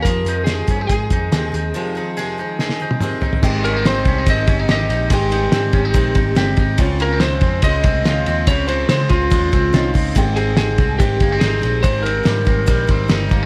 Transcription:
<<
  \new Staff \with { instrumentName = "Lead electric guitar" } { \time 4/4 \key aes \major \tempo 4 = 142 bes'4 aes'4 aes'2~ | aes'2. r4 | r8 bes'8 c''4 ees''4 ees''4 | g'2. r4 |
r8 bes'8 c''4 ees''2 | des''8 c''8 c''8 f'2 r8 | r8 aes'8 aes'4 g'4 aes'4 | c''8 bes'2. r8 | }
  \new Staff \with { instrumentName = "Clean electric guitar" } { \time 4/4 \key aes \major f8 ees'8 aes'8 des'16 ees'16 aes'8 ees'8 c'8 ees'8 | f8 ees'8 aes'8 ees'8 aes'8 ees'8 c'8 ees'8 | aes8 des'16 ees'16 c'8 des'16 ees'16 c'8 des'16 ees'16 g'8 ees'8 | aes8 ees'8 c'8 des'16 ees'16 c'8 ees'8 g'8 ees'8 |
des8 bes16 c'16 aes8 c'8 aes8 c'8 f'8 c'8 | des8 c'8 aes8 c'8 aes8 c'8 f'8 c'8 | aes,8 c'4 c'4 bes16 c'16 ees'8 c'8 | aes,8 c'8 g8 c'8 g8 c'8 ees'8 bes16 c'16 | }
  \new Staff \with { instrumentName = "Twelve-string acoustic guitar" } { \time 4/4 \key aes \major <f, c ees aes c' aes'>8 <ees aes c' aes'>8 <f, c ees aes c' aes'>8 <ees aes c' aes'>8 <ees aes c' aes'>8 <ees aes c' aes'>8 <f, c ees aes c' aes'>8 <ees aes c' aes'>8 | <f, c ees aes c' aes'>8 <ees aes c' aes'>8 <f, c ees aes c' aes'>8 <ees aes c' aes'>8 <ees aes c' aes'>8 <ees aes c' aes'>8 <f, c ees aes c' aes'>8 <ees aes c' aes'>8 | <aes, ees g c' ees'>8 <g c' ees'>8 <ees g c' ees'>8 <g c' ees'>8 <aes, ees g c' ees'>8 <g c'>8 <ees g c' ees'>8 <g c' ees'>8 | <aes, ees g c' ees'>8 <g c' ees'>8 <ees g c' ees'>8 <g c' ees'>8 <aes, ees g c' ees'>8 <g c' ees'>8 <ees g c' ees'>8 <g c' ees'>8 |
<des aes c' f'>8 <aes c' f'>8 <des aes c' f'>8 <aes c' f'>8 <des aes c' f'>8 <aes c' f'>8 <des aes c' f'>8 <aes c' f'>8 | <des aes c' f'>8 <aes c' f'>8 <des aes c' f'>8 <aes c' f'>8 <des aes c' f'>8 <aes c' f'>8 <des aes c' f'>8 <aes c' f'>8 | <aes, ees g c' ees'>8 <g c' ees'>8 <ees g c' ees'>8 <g ees'>8 <aes, ees g c' ees'>8 <g c' ees'>8 <ees g c' ees'>8 <g c' ees'>8 | <aes, ees g c' ees'>8 <g c' ees'>8 <ees g c' ees'>8 <g c' ees'>8 <aes, ees g c' ees'>8 <g c' ees'>8 <ees g c' ees'>8 <g c' ees'>8 | }
  \new Staff \with { instrumentName = "Upright piano" } { \time 4/4 \key aes \major r1 | r1 | <aes c' g'>1~ | <aes c' g'>2. <aes c' g'>4 |
<c' des' f'>1~ | <c' des' f'>2. <c' des' ees'>4 | <aes c' g''>1~ | <aes c' g''>1 | }
  \new Staff \with { instrumentName = "Picked electric bass" } { \clef bass \time 4/4 \key aes \major f,8 f,4 g,8 aes,8 f,8 ees,8 ees,8 | r1 | aes,,4. c,8 aes,,8 g,,8 aes,,8 bes,,8 | aes,,4 aes,8 aes,,8 bes,,8 aes,,8 g,,8 aes,,8 |
des,4. f,8 des,8 c,8 des,8 ees,8 | des,4 des8 des,8 ees,8 des,8 c,8 des,8 | aes,,4. c,8 aes,,8 g,,8 aes,,8 bes,,8 | aes,,4 aes,8 aes,,8 bes,,8 aes,,8 g,,8 aes,,8 | }
  \new DrumStaff \with { instrumentName = "Drums" } \drummode { \time 4/4 <hh bd>8 hh8 <hh sn>8 <hh bd>8 <hh bd>8 <hh bd>8 <hh sn>8 hh8 | r4 r4 sn16 sn8 tommh16 toml8 tomfh16 tomfh16 | <cymc bd>8 cymr8 <cymr sn>8 <bd cymr>8 <bd cymr>8 <bd cymr>8 <cymr sn>8 cymr8 | <bd cymr>8 cymr8 <cymr sn>8 <bd cymr>8 <bd cymr>8 <bd cymr>8 <cymr sn>8 <bd cymr>8 |
<bd cymr>8 cymr8 <cymr sn>8 <bd cymr>8 <bd cymr>8 <bd cymr>8 <cymr sn>8 cymr8 | <bd cymr>8 cymr8 <cymr sn>8 <bd cymr>8 <bd cymr>8 <bd cymr>8 <cymr sn>8 <hho bd cymr>8 | <hhp bd cymr>8 cymr8 <cymr sn>8 <bd cymr>8 <bd cymr>8 <bd cymr>8 <cymr sn>8 cymr8 | <bd cymr>8 cymr8 <cymr sn>8 <bd cymr>8 <bd cymr>8 <bd cymr>8 <cymr sn>8 <bd cymr>8 | }
>>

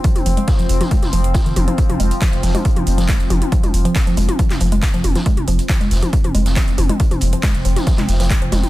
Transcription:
<<
  \new Staff \with { instrumentName = "Synth drone" } { \clef bass \time 4/4 \key f \minor \tempo 4 = 138 <f c'>1~ | <f c'>1~ | <f c'>1~ | <f c'>1~ |
<f c'>1 | }
  \new Staff \with { instrumentName = "Synth arpeggio sound" } { \clef bass \time 4/4 \key f \minor f16 r16 f16 aes16 r16 f16 r16 f16 aes16 r16 f16 r16 f'16 ees16 f16 f16 | r16 f16 aes16 r16 f16 r16 f16 aes16 r16 f16 r16 f16 aes16 r16 f16 r16 | f16 aes16 r16 f16 r16 f16 aes16 r16 f16 r16 f16 aes16 r16 f16 r16 f16 | aes16 r16 f16 r16 f16 aes16 r16 f16 r16 f16 aes16 r16 f16 r16 f16 aes16 |
r16 f16 r16 f16 aes16 r16 f16 r16 f16 aes16 r16 f16 r16 f16 aes16 r16 | }
  \new Staff \with { instrumentName = "Sub bass" } { \clef bass \time 4/4 \key f \minor r16 f,,16 f,,16 r8 f,,16 f,,16 r8 f,,16 f,,16 f,,16 r16 f,,16 f,,16 r16 | r16 f,,16 f,,16 r8 f,,16 f,,16 r8 f,,16 f,,16 f,,16 r16 f,,16 f,,16 r16 | r16 f,,16 f,,16 r8 f,,16 f,,16 r8 f,,16 f,,16 f,,16 r16 f,,16 f,,16 r16 | r16 f,,16 f,,16 r8 f,,16 f,,16 r8 f,,16 f,,16 f,,16 r16 f,,16 f,,16 r16 |
r16 f,,16 f,,16 r8 f,,16 f,,16 r8 f,,16 f,,16 f,,16 r16 f,,16 f,,16 r16 | }
  \new DrumStaff \with { instrumentName = "Drums" } \drummode { \time 4/4 <hh bd>16 <hh toml>16 <hh hho>16 hh16 <hh bd sn>16 hh16 <hh hho>16 <hh sn toml>16 <hh bd>16 <hh sn toml>16 <hh hho>16 hh16 <hh bd sn>16 hh16 <hh hho toml>16 <hh toml>16 | <hh bd>16 <hh toml>16 <hh hho>16 hh16 <hc hh bd sn>16 hh16 <hho sn>16 <hh toml>16 <hh bd>16 <hh toml>16 <hh hho>16 <hh sn>16 <hc hh bd sn>16 hh16 <hh hho toml>16 <hh toml>16 | <hh bd>16 <hh toml>16 <hh hho>16 hh16 <hc hh bd sn>16 hh16 <hh hho>16 <hh toml>16 <hh bd>16 <hc hh sn toml>16 <hh hho>16 hh16 <hc hh bd sn>16 hh16 <hh hho toml>16 <hh sn toml>16 | <hh bd>16 <hh toml>16 <hh hho>16 hh16 <hc hh bd sn>16 hh16 <hho sn>16 <hh toml>16 <hh bd>16 <hh toml>16 <hh hho>16 <hh sn>16 <hc hh bd sn>16 hh16 <hh hho toml>16 <hh toml>16 |
<hh bd>16 <hh toml>16 <hh hho>16 hh16 <hc hh bd sn>16 hh16 <hh hho>16 <hh sn toml>16 <hh bd sn>16 <hc hh toml>16 <hho sn>16 <hh sn>16 <hc hh bd>16 hh16 <hh hho sn toml>16 <hh toml>16 | }
>>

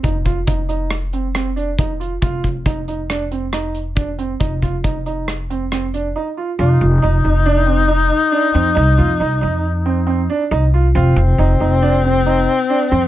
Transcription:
<<
  \new Staff \with { instrumentName = "Grand piano" } { \time 5/4 \key c \minor \tempo 4 = 137 ees'8 f'8 ees'8 ees'4 c'8 c'8 d'8 ees'8 f'8 | f'4 ees'8 ees'8 d'8 c'8 ees'4 d'8 c'8 | ees'8 f'8 ees'8 ees'4 c'8 c'8 d'8 ees'8 f'8 | f'4 ees'8 ees'8 d'8 c'8 ees'4 d'8 c'8 |
ees'8 f'8 ees'8 ees'4 c'8 c'8 d'8 ees'8 f'8 | f'4 ees'8 ees'8 d'8 c'8 ees'4 d'8 c'8 | }
  \new Staff \with { instrumentName = "Alto saxophone" } { \time 5/4 \key c \minor r1 r4 | r1 r4 | r1 r4 | ees'1~ ees'4~ |
ees'1~ ees'8 r8 | c'1~ c'4 | }
  \new Staff \with { instrumentName = "Upright bass" } { \clef bass \time 5/4 \key c \minor f,,1~ f,,4 | f,,1~ f,,4 | f,,1 r4 | f,,8 f,,8 f,,8 f,,2 r4 f,8 |
c,8 f,8 c,8 f,2 r8 c,4 | f,,8 f,,8 f,,8 f,,2 r4 f,8 | }
  \new DrumStaff \with { instrumentName = "Drums" } \drummode { \time 5/4 <hh bd>8 <hh bd>8 <hh bd>8 hh8 <hh ss>8 hh8 <hh ss>8 hh8 <hh bd>8 hh8 | <hh bd>8 <hh bd>8 <hh bd>8 hh8 <hh ss>8 hh8 <hh ss>8 hh8 <hh bd>8 hh8 | <hh bd>8 <hh bd>8 <hh bd>8 hh8 <hh ss>8 hh8 <hh ss>8 hh8 r4 | r4 r4 r4 r4 r4 |
r4 r4 r4 r4 r4 | r4 r4 r4 r4 r4 | }
>>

